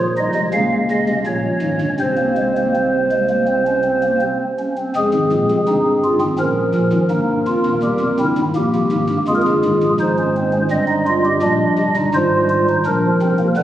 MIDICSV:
0, 0, Header, 1, 2, 480
1, 0, Start_track
1, 0, Key_signature, -4, "minor"
1, 0, Tempo, 733496
1, 1303, Time_signature, 4, 2, 24, 8
1, 3238, Tempo, 718563
1, 9038, End_track
2, 0, Start_track
2, 0, Title_t, "Pipe organ"
2, 0, Program_c, 0, 19
2, 0, Note_on_c, 0, 34, 82
2, 0, Note_on_c, 0, 46, 74
2, 0, Note_on_c, 0, 53, 67
2, 99, Note_off_c, 0, 53, 0
2, 115, Note_on_c, 0, 63, 66
2, 115, Note_on_c, 0, 75, 72
2, 118, Note_on_c, 0, 55, 69
2, 180, Note_off_c, 0, 34, 0
2, 181, Note_off_c, 0, 46, 0
2, 218, Note_off_c, 0, 55, 0
2, 226, Note_on_c, 0, 48, 76
2, 227, Note_on_c, 0, 56, 68
2, 231, Note_on_c, 0, 36, 78
2, 260, Note_off_c, 0, 63, 0
2, 261, Note_off_c, 0, 75, 0
2, 330, Note_off_c, 0, 48, 0
2, 331, Note_off_c, 0, 56, 0
2, 332, Note_off_c, 0, 36, 0
2, 349, Note_on_c, 0, 77, 71
2, 350, Note_on_c, 0, 49, 77
2, 351, Note_on_c, 0, 37, 77
2, 351, Note_on_c, 0, 58, 71
2, 351, Note_on_c, 0, 61, 65
2, 496, Note_off_c, 0, 49, 0
2, 496, Note_off_c, 0, 77, 0
2, 497, Note_off_c, 0, 37, 0
2, 592, Note_on_c, 0, 49, 85
2, 592, Note_on_c, 0, 75, 67
2, 593, Note_on_c, 0, 37, 75
2, 691, Note_off_c, 0, 37, 0
2, 691, Note_off_c, 0, 49, 0
2, 713, Note_on_c, 0, 48, 66
2, 715, Note_on_c, 0, 36, 75
2, 737, Note_off_c, 0, 75, 0
2, 757, Note_off_c, 0, 58, 0
2, 811, Note_off_c, 0, 48, 0
2, 813, Note_off_c, 0, 36, 0
2, 815, Note_off_c, 0, 61, 0
2, 826, Note_on_c, 0, 34, 73
2, 827, Note_on_c, 0, 73, 61
2, 828, Note_on_c, 0, 46, 70
2, 828, Note_on_c, 0, 61, 73
2, 973, Note_off_c, 0, 34, 0
2, 975, Note_off_c, 0, 46, 0
2, 1059, Note_on_c, 0, 32, 72
2, 1059, Note_on_c, 0, 44, 70
2, 1163, Note_off_c, 0, 32, 0
2, 1163, Note_off_c, 0, 44, 0
2, 1183, Note_on_c, 0, 31, 67
2, 1185, Note_on_c, 0, 43, 72
2, 1238, Note_off_c, 0, 73, 0
2, 1239, Note_off_c, 0, 61, 0
2, 1286, Note_off_c, 0, 31, 0
2, 1288, Note_off_c, 0, 43, 0
2, 1306, Note_on_c, 0, 60, 68
2, 1307, Note_on_c, 0, 48, 71
2, 1307, Note_on_c, 0, 72, 62
2, 1308, Note_on_c, 0, 36, 62
2, 1425, Note_on_c, 0, 58, 60
2, 1529, Note_off_c, 0, 58, 0
2, 1553, Note_on_c, 0, 56, 61
2, 1654, Note_off_c, 0, 56, 0
2, 1686, Note_on_c, 0, 58, 57
2, 1783, Note_off_c, 0, 58, 0
2, 1793, Note_off_c, 0, 60, 0
2, 1806, Note_on_c, 0, 60, 62
2, 1951, Note_off_c, 0, 60, 0
2, 2040, Note_on_c, 0, 56, 68
2, 2140, Note_off_c, 0, 56, 0
2, 2158, Note_on_c, 0, 58, 55
2, 2259, Note_off_c, 0, 58, 0
2, 2276, Note_on_c, 0, 60, 60
2, 2379, Note_off_c, 0, 60, 0
2, 2405, Note_on_c, 0, 61, 65
2, 2503, Note_off_c, 0, 61, 0
2, 2516, Note_on_c, 0, 60, 65
2, 2618, Note_off_c, 0, 60, 0
2, 2639, Note_on_c, 0, 58, 54
2, 2741, Note_off_c, 0, 58, 0
2, 2758, Note_on_c, 0, 60, 60
2, 2763, Note_off_c, 0, 36, 0
2, 2763, Note_off_c, 0, 48, 0
2, 2763, Note_off_c, 0, 72, 0
2, 2908, Note_off_c, 0, 60, 0
2, 3007, Note_on_c, 0, 61, 63
2, 3107, Note_off_c, 0, 61, 0
2, 3129, Note_on_c, 0, 60, 54
2, 3228, Note_off_c, 0, 60, 0
2, 3243, Note_on_c, 0, 60, 73
2, 3245, Note_on_c, 0, 29, 77
2, 3245, Note_on_c, 0, 68, 66
2, 3247, Note_on_c, 0, 56, 61
2, 3248, Note_on_c, 0, 41, 79
2, 3346, Note_off_c, 0, 29, 0
2, 3348, Note_off_c, 0, 41, 0
2, 3365, Note_on_c, 0, 32, 72
2, 3365, Note_on_c, 0, 44, 77
2, 3467, Note_off_c, 0, 32, 0
2, 3467, Note_off_c, 0, 44, 0
2, 3489, Note_on_c, 0, 46, 68
2, 3493, Note_on_c, 0, 34, 77
2, 3589, Note_off_c, 0, 46, 0
2, 3591, Note_off_c, 0, 34, 0
2, 3614, Note_on_c, 0, 36, 84
2, 3615, Note_on_c, 0, 48, 79
2, 3656, Note_off_c, 0, 60, 0
2, 3658, Note_off_c, 0, 56, 0
2, 3712, Note_off_c, 0, 36, 0
2, 3712, Note_off_c, 0, 48, 0
2, 3728, Note_on_c, 0, 60, 70
2, 3728, Note_on_c, 0, 63, 67
2, 3730, Note_on_c, 0, 31, 81
2, 3730, Note_on_c, 0, 43, 83
2, 3875, Note_off_c, 0, 63, 0
2, 3972, Note_on_c, 0, 65, 69
2, 4036, Note_off_c, 0, 43, 0
2, 4037, Note_off_c, 0, 31, 0
2, 4068, Note_off_c, 0, 60, 0
2, 4071, Note_off_c, 0, 65, 0
2, 4071, Note_off_c, 0, 68, 0
2, 4082, Note_on_c, 0, 32, 78
2, 4082, Note_on_c, 0, 44, 74
2, 4082, Note_on_c, 0, 60, 60
2, 4185, Note_off_c, 0, 32, 0
2, 4185, Note_off_c, 0, 44, 0
2, 4185, Note_off_c, 0, 60, 0
2, 4201, Note_on_c, 0, 46, 87
2, 4201, Note_on_c, 0, 61, 66
2, 4203, Note_on_c, 0, 34, 79
2, 4203, Note_on_c, 0, 53, 63
2, 4203, Note_on_c, 0, 70, 63
2, 4350, Note_off_c, 0, 46, 0
2, 4352, Note_off_c, 0, 34, 0
2, 4439, Note_on_c, 0, 46, 83
2, 4443, Note_on_c, 0, 34, 86
2, 4544, Note_off_c, 0, 46, 0
2, 4546, Note_off_c, 0, 34, 0
2, 4558, Note_on_c, 0, 32, 79
2, 4561, Note_on_c, 0, 44, 76
2, 4615, Note_off_c, 0, 61, 0
2, 4616, Note_off_c, 0, 53, 0
2, 4664, Note_off_c, 0, 32, 0
2, 4665, Note_off_c, 0, 44, 0
2, 4678, Note_on_c, 0, 58, 74
2, 4680, Note_on_c, 0, 31, 86
2, 4681, Note_on_c, 0, 43, 85
2, 4682, Note_on_c, 0, 63, 68
2, 4830, Note_off_c, 0, 31, 0
2, 4831, Note_off_c, 0, 43, 0
2, 4831, Note_off_c, 0, 63, 0
2, 4925, Note_on_c, 0, 65, 69
2, 4928, Note_on_c, 0, 29, 80
2, 4930, Note_on_c, 0, 41, 85
2, 5030, Note_off_c, 0, 29, 0
2, 5031, Note_off_c, 0, 41, 0
2, 5049, Note_on_c, 0, 39, 77
2, 5050, Note_on_c, 0, 27, 77
2, 5074, Note_off_c, 0, 65, 0
2, 5094, Note_off_c, 0, 58, 0
2, 5150, Note_off_c, 0, 39, 0
2, 5151, Note_off_c, 0, 27, 0
2, 5161, Note_on_c, 0, 28, 80
2, 5164, Note_on_c, 0, 67, 74
2, 5165, Note_on_c, 0, 40, 76
2, 5165, Note_on_c, 0, 55, 73
2, 5266, Note_off_c, 0, 28, 0
2, 5268, Note_off_c, 0, 40, 0
2, 5277, Note_on_c, 0, 41, 79
2, 5280, Note_on_c, 0, 29, 90
2, 5314, Note_off_c, 0, 55, 0
2, 5314, Note_off_c, 0, 67, 0
2, 5384, Note_off_c, 0, 41, 0
2, 5386, Note_off_c, 0, 29, 0
2, 5406, Note_on_c, 0, 31, 85
2, 5406, Note_on_c, 0, 43, 77
2, 5408, Note_on_c, 0, 60, 62
2, 5410, Note_on_c, 0, 64, 64
2, 5445, Note_off_c, 0, 70, 0
2, 5509, Note_off_c, 0, 31, 0
2, 5509, Note_off_c, 0, 43, 0
2, 5528, Note_on_c, 0, 32, 83
2, 5530, Note_on_c, 0, 44, 78
2, 5556, Note_off_c, 0, 60, 0
2, 5558, Note_off_c, 0, 64, 0
2, 5631, Note_off_c, 0, 32, 0
2, 5631, Note_off_c, 0, 44, 0
2, 5647, Note_on_c, 0, 58, 71
2, 5651, Note_on_c, 0, 67, 78
2, 5652, Note_on_c, 0, 46, 88
2, 5653, Note_on_c, 0, 34, 92
2, 5753, Note_off_c, 0, 34, 0
2, 5753, Note_off_c, 0, 46, 0
2, 5779, Note_on_c, 0, 36, 88
2, 5782, Note_on_c, 0, 48, 77
2, 5876, Note_off_c, 0, 36, 0
2, 5878, Note_off_c, 0, 48, 0
2, 5888, Note_on_c, 0, 44, 82
2, 5894, Note_on_c, 0, 32, 89
2, 5990, Note_off_c, 0, 44, 0
2, 5993, Note_off_c, 0, 32, 0
2, 6005, Note_on_c, 0, 31, 80
2, 6007, Note_on_c, 0, 43, 79
2, 6059, Note_off_c, 0, 58, 0
2, 6062, Note_off_c, 0, 67, 0
2, 6109, Note_off_c, 0, 31, 0
2, 6110, Note_off_c, 0, 43, 0
2, 6130, Note_on_c, 0, 56, 70
2, 6131, Note_on_c, 0, 41, 91
2, 6132, Note_on_c, 0, 29, 84
2, 6132, Note_on_c, 0, 68, 74
2, 6134, Note_on_c, 0, 65, 65
2, 6170, Note_off_c, 0, 68, 0
2, 6180, Note_on_c, 0, 70, 56
2, 6223, Note_off_c, 0, 70, 0
2, 6223, Note_on_c, 0, 68, 68
2, 6232, Note_off_c, 0, 41, 0
2, 6233, Note_off_c, 0, 29, 0
2, 6263, Note_on_c, 0, 31, 86
2, 6264, Note_on_c, 0, 43, 87
2, 6359, Note_off_c, 0, 31, 0
2, 6360, Note_off_c, 0, 43, 0
2, 6377, Note_on_c, 0, 44, 95
2, 6378, Note_on_c, 0, 32, 84
2, 6476, Note_off_c, 0, 44, 0
2, 6477, Note_off_c, 0, 32, 0
2, 6498, Note_on_c, 0, 34, 78
2, 6503, Note_on_c, 0, 46, 82
2, 6544, Note_off_c, 0, 65, 0
2, 6555, Note_off_c, 0, 68, 0
2, 6597, Note_off_c, 0, 34, 0
2, 6600, Note_off_c, 0, 46, 0
2, 6612, Note_on_c, 0, 32, 89
2, 6613, Note_on_c, 0, 44, 93
2, 6613, Note_on_c, 0, 63, 82
2, 6614, Note_on_c, 0, 72, 73
2, 6714, Note_off_c, 0, 63, 0
2, 6739, Note_on_c, 0, 61, 62
2, 6837, Note_off_c, 0, 61, 0
2, 6863, Note_on_c, 0, 60, 68
2, 6955, Note_off_c, 0, 56, 0
2, 6959, Note_off_c, 0, 60, 0
2, 6970, Note_on_c, 0, 61, 69
2, 7022, Note_off_c, 0, 32, 0
2, 7023, Note_off_c, 0, 44, 0
2, 7024, Note_off_c, 0, 72, 0
2, 7072, Note_off_c, 0, 61, 0
2, 7086, Note_on_c, 0, 43, 74
2, 7086, Note_on_c, 0, 55, 74
2, 7087, Note_on_c, 0, 60, 90
2, 7088, Note_on_c, 0, 75, 74
2, 7090, Note_on_c, 0, 31, 75
2, 7191, Note_off_c, 0, 60, 0
2, 7203, Note_on_c, 0, 63, 98
2, 7309, Note_off_c, 0, 63, 0
2, 7329, Note_on_c, 0, 65, 88
2, 7433, Note_off_c, 0, 65, 0
2, 7448, Note_on_c, 0, 67, 92
2, 7502, Note_off_c, 0, 43, 0
2, 7502, Note_off_c, 0, 55, 0
2, 7504, Note_off_c, 0, 31, 0
2, 7552, Note_off_c, 0, 67, 0
2, 7562, Note_on_c, 0, 34, 80
2, 7564, Note_on_c, 0, 55, 76
2, 7565, Note_on_c, 0, 46, 81
2, 7565, Note_on_c, 0, 62, 103
2, 7713, Note_off_c, 0, 34, 0
2, 7715, Note_off_c, 0, 46, 0
2, 7804, Note_on_c, 0, 48, 84
2, 7809, Note_on_c, 0, 36, 81
2, 7875, Note_off_c, 0, 62, 0
2, 7908, Note_off_c, 0, 48, 0
2, 7911, Note_off_c, 0, 36, 0
2, 7913, Note_off_c, 0, 75, 0
2, 7924, Note_on_c, 0, 63, 86
2, 7925, Note_on_c, 0, 31, 77
2, 7925, Note_on_c, 0, 43, 75
2, 8028, Note_off_c, 0, 31, 0
2, 8028, Note_off_c, 0, 43, 0
2, 8028, Note_off_c, 0, 63, 0
2, 8044, Note_on_c, 0, 44, 81
2, 8045, Note_on_c, 0, 32, 86
2, 8046, Note_on_c, 0, 72, 78
2, 8049, Note_on_c, 0, 65, 104
2, 8195, Note_off_c, 0, 65, 0
2, 8282, Note_on_c, 0, 65, 97
2, 8384, Note_off_c, 0, 55, 0
2, 8384, Note_off_c, 0, 65, 0
2, 8413, Note_on_c, 0, 63, 93
2, 8452, Note_off_c, 0, 44, 0
2, 8453, Note_off_c, 0, 32, 0
2, 8453, Note_off_c, 0, 72, 0
2, 8510, Note_off_c, 0, 63, 0
2, 8520, Note_on_c, 0, 62, 95
2, 8522, Note_on_c, 0, 34, 87
2, 8522, Note_on_c, 0, 46, 75
2, 8523, Note_on_c, 0, 70, 79
2, 8524, Note_on_c, 0, 53, 80
2, 8668, Note_off_c, 0, 62, 0
2, 8669, Note_off_c, 0, 34, 0
2, 8669, Note_off_c, 0, 46, 0
2, 8764, Note_on_c, 0, 36, 74
2, 8764, Note_on_c, 0, 60, 104
2, 8765, Note_on_c, 0, 48, 80
2, 8864, Note_off_c, 0, 60, 0
2, 8879, Note_on_c, 0, 58, 86
2, 8909, Note_off_c, 0, 36, 0
2, 8910, Note_off_c, 0, 48, 0
2, 8931, Note_off_c, 0, 70, 0
2, 8932, Note_off_c, 0, 53, 0
2, 8981, Note_off_c, 0, 58, 0
2, 8995, Note_on_c, 0, 71, 82
2, 8997, Note_on_c, 0, 38, 84
2, 8998, Note_on_c, 0, 50, 77
2, 8999, Note_on_c, 0, 55, 76
2, 8999, Note_on_c, 0, 59, 99
2, 9038, Note_off_c, 0, 38, 0
2, 9038, Note_off_c, 0, 50, 0
2, 9038, Note_off_c, 0, 55, 0
2, 9038, Note_off_c, 0, 59, 0
2, 9038, Note_off_c, 0, 71, 0
2, 9038, End_track
0, 0, End_of_file